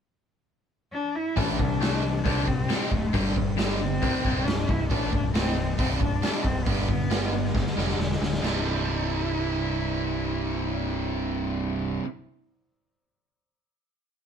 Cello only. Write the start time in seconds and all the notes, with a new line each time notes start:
0.93 D4
1.16 E4
1.36 D4
2.25 D4
2.47 C4
2.92 A3
3.14 G3
3.80 C4
4.44 D4
4.68 E4
4.90 D4
5.34 C4
5.78 C4
5.98 D4
6.44 C4
6.64 B3
8.42 E4